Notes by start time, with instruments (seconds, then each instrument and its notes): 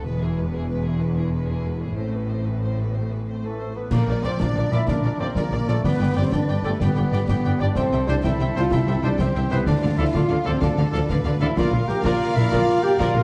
0.05 double bass section E1, cello section E2, viola section G#3, violin section B3 B4
0.21 viola section E3, violin section E4 G#4
0.38 viola section G#3, violin section B3 B4
0.54 viola section E3, violin section E4 G#4
0.69 viola section G#3, violin section B3 B4
0.86 viola section E3, violin section E4 G#4
1.01 viola section G#3, violin section B3 B4
1.16 viola section E3, violin section E4 G#4
1.33 viola section G#3, violin section B3 B4
1.49 viola section E3, violin section E4 G#4
1.65 viola section G#3, violin section B3 B4
1.81 viola section E3, violin section E4 G#4
1.96 double bass section A1, cello section A2, viola section A3, violin section C4 C5
2.13 viola section E3, violin section B3 B4
2.30 viola section A3, violin section C4 C5
2.45 viola section E3, violin section B3 B4
2.63 viola section A3, violin section C4 C5
2.79 viola section E3, violin section B3 B4
2.95 viola section A3, violin section C4 C5
3.11 viola section E3, violin section B3 B4
3.27 viola section A3, violin section C4 C5
3.42 viola section E3, cor anglais A3, french horn section A3, violin section B3 B4, clarinet A4, flute A4
3.58 viola section A3, violin section C4 C5
3.75 viola section E3, french horn section B3, cor anglais B3, violin section B3 B4, flute B4, clarinet B4
3.91 tuba A#1, double bass section A#1, cello section A#2, french horn section A#3, cor anglais A#3, viola section A#4 D5, flute A#4, clarinet A#4, violin section D5, concert bass drum, snare, crash
3.95 violin section D5
4.07 double bass section A#1, tuba A#1, cello section A#2, viola section A#4 D5, violin section D5
4.23 tuba A#1, double bass section A#1, cello section A#2, trombone section F3 A#3, cor anglais C4, french horn section C4, viola section A#4 D5, flute C5, clarinet C5, trumpet D5, violin section D5, snare
4.39 double bass section A#1, tuba A#1, cello section A#2, cor anglais D4, french horn section D4, viola section A#4 D5, flute D5, clarinet D5, violin section D5, concert bass drum, snare
4.55 double bass section A#1, tuba A#1, cello section A#2, viola section A#4 D5, violin section D5
4.71 double bass section A#1, tuba A#1, cello section A#2, trombone section F3 A#3, cor anglais E4, french horn section E4, viola section A#4 D5, trumpet D5, violin section D5, flute E5, clarinet E5, snare
4.87 double bass section A#1, tuba A#1, cello section A#2, cor anglais D4, french horn section D4, violin section A#4 D5, viola section A#4 D5, clarinet D5, flute D5, concert bass drum, snare
5.03 double bass section A#1, tuba A#1, cello section A#2, viola section A#4 D5, violin section D5
5.20 double bass section A#1, tuba A#1, cello section A#2, trombone section F3 A#3, cor anglais C4, french horn section C4, viola section A#4 D5, clarinet C5, flute C5, trumpet D5, violin section D5
5.35 double bass section A#1, tuba A#1, cello section A#2, cor anglais A#3, french horn section A#3, clarinet A#4, flute A#4, viola section A#4 D5, violin section D5, concert bass drum, snare
5.52 double bass section A#1, tuba A#1, cello section A#2, viola section A#4 D5, violin section D5
5.67 double bass section A#1, tuba A#1, cello section A#2, trombone section F3 A#3, cor anglais A3, french horn section A3, clarinet A4, flute A4, viola section A#4 D5, trumpet D5, violin section D5, snare
5.83 double bass section G1, tuba G1, cello section G2, french horn section B3, cor anglais B3, clarinet B4, violin section B4 G5, flute B4, viola section D5, concert bass drum, snare
5.99 double bass section G1, tuba G1, cello section G2, viola section D5, violin section G5
6.15 double bass section G1, tuba G1, cello section G2, trombone section D3 G3, french horn section C4, cor anglais C4, clarinet C5, flute C5, viola section D5, trumpet D5, violin section G5
6.30 double bass section G1, tuba G1, cello section G2, french horn section D4, cor anglais D4, violin section B4 G5, viola section D5, clarinet D5, flute D5, concert bass drum, snare
6.47 double bass section G1, tuba G1, cello section G2, viola section D5, violin section G5
6.63 double bass section G1, tuba G1, cello section G2, trombone section D3 G3, french horn section A3, cor anglais A3, clarinet A4, flute A4, viola section D5, trumpet D5, violin section G5
6.79 double bass section G1, tuba G1, cello section G2, french horn section B3, cor anglais B3, violin section G4 G5, clarinet B4, flute B4, viola section D5, concert bass drum, snare
6.96 double bass section G1, tuba G1, cello section G2, viola section D5, violin section G5
7.12 double bass section G1, tuba G1, cello section G2, trombone section D3 G3, trumpet D5, viola section D5, violin section G5, snare
7.28 double bass section G1, tuba G1, cello section G2, french horn section B3, cor anglais B3, clarinet B4, flute B4, viola section D5, violin section G5, concert bass drum, snare
7.44 double bass section G1, tuba G1, cello section G2, viola section D5, violin section G5
7.60 double bass section G1, tuba G1, cello section G2, trombone section D3 G3, cor anglais D4, french horn section D4, flute D5, viola section D5, clarinet D5, trumpet D5, violin section G5
7.75 double bass section C2, tuba C2, cello section C3, cor anglais C4, french horn section C4, violin section A4 G5, flute C5, viola section C5 E5, clarinet C5, concert bass drum, snare
7.91 double bass section C2, tuba C2, cello section C3, viola section C5 E5, violin section G5
8.06 double bass section C2, tuba C2, cello section C3, trombone section E3 G3, cor anglais D4, french horn section D4, viola section C5 E5, trumpet C5, flute D5, clarinet D5, violin section G5, snare
8.23 double bass section C2, tuba C2, cello section C3, french horn section E4, cor anglais E4, viola section C5 E5, flute E5, clarinet E5, violin section G5, concert bass drum, snare
8.40 double bass section C2, tuba C2, cello section C3, viola section C5 E5, violin section G5
8.55 double bass section C2, tuba C2, cello section C3, trombone section E3 G3, cor anglais F4, french horn section F4, trumpet C5, viola section C5 E5, flute F5, clarinet F5, violin section G5, snare
8.71 tuba C2, double bass section C2, cello section C3, cor anglais E4, viola section C5 E5, flute E5, clarinet E5, violin section G5, concert bass drum, snare
8.75 french horn section E4
8.87 double bass section C2, tuba C2, cello section C3, viola section C5 E5, violin section G5
9.02 double bass section C2, tuba C2, cello section C3, trombone section E3 G3, cor anglais D4, french horn section D4, trumpet C5, viola section C5 E5, flute D5, clarinet D5, violin section G5
9.18 double bass section C2, tuba C2, cello section C3, cor anglais C4, violin section G4 G5, viola section C5 E5, clarinet C5, flute C5, concert bass drum, snare
9.22 french horn section C4
9.35 double bass section C2, tuba C2, cello section C3, viola section C5 E5, violin section G5
9.50 double bass section C2, tuba C2, cello section C3, trombone section E3 G3, cor anglais B3, french horn section B3, clarinet B4, flute B4, trumpet C5, viola section C5 E5, violin section G5, snare
9.66 double bass section D2, tuba D2, cello section D3, cor anglais D4, french horn section D4, violin section F4 F5, viola section A4 D5, clarinet D5, flute D5, concert bass drum, snare
9.82 double bass section D2, tuba D2, cello section D3, viola section A4 D5, violin section F5
9.98 double bass section D2, tuba D2, trombone section D3 F3, cello section D3, cor anglais E4, french horn section E4, trumpet A4, viola section A4 D5, clarinet E5, flute E5, violin section F5
10.13 tuba D2, double bass section D2, cello section D3, cor anglais F4, french horn section F4, viola section A4 D5, violin section F5, clarinet F5, flute F5, concert bass drum, snare
10.29 double bass section D2, tuba D2, cello section D3, viola section A4 D5, violin section F5
10.44 double bass section D2, tuba D2, trombone section D3 F3, cello section D3, cor anglais C4, french horn section C4, trumpet A4, viola section A4 D5, clarinet C5, flute C5, violin section F5
10.61 tuba D2, double bass section D2, cello section D3, cor anglais D4, french horn section D4, violin section A4 F5, viola section A4 D5, clarinet D5, flute D5, concert bass drum, snare
10.77 double bass section D2, tuba D2, cello section D3, viola section A4 D5, violin section F5
10.92 tuba D2, double bass section D2, cello section D3, trombone section D3 F3, trumpet A4, viola section A4 D5, violin section F5, snare
11.09 double bass section D2, tuba D2, cello section D3, viola section A4 D5, violin section B4 F5, concert bass drum, snare
11.25 double bass section D2, tuba D2, cello section D3, viola section A4 D5, violin section F5
11.40 double bass section D2, tuba D2, cello section D3, trombone section D3 F3, french horn section E4, cor anglais E4, trumpet A4, viola section A4 D5, clarinet E5, flute E5, violin section F5
11.56 double bass section A#1, tuba A#1, cello section A#2, trombone section D3 A#3, french horn section F4, cor anglais F4, violin section A#4 F5, trumpet A#4, viola section A#4 D5, clarinet F5, flute F5, concert bass drum, snare, crash
11.72 double bass section A#1, tuba A#1, cello section A#2, viola section F4 A#4
11.88 double bass section A#1, tuba A#1, cello section A#2, french horn section G4, cor anglais G4, viola section A#4, clarinet G5, flute G5, snare
12.02 double bass section A#1, tuba A#1, cello section A#2, french horn section F4, cor anglais F4, viola section A#4 D5, violin section D5, clarinet F5, flute F5, concert bass drum, snare
12.35 double bass section A#1, tuba A#1, cello section A#2, french horn section E4, cor anglais E4, viola section A#4, clarinet E5, flute E5, snare
12.50 double bass section A#1, tuba A#1, cello section A#2, french horn section F4, cor anglais F4, viola section A#4 D5, clarinet F5, flute F5, concert bass drum, snare
12.82 french horn section G4, cor anglais G4, clarinet G5, flute G5
12.99 double bass section A#1, tuba A#1, cello section A#2, french horn section F4, cor anglais F4, viola section A#4 D5, violin section A#4, flute F5, clarinet F5, concert bass drum, snare
13.15 double bass section A#1, tuba A#1, cello section A#2, viola section F4 A#4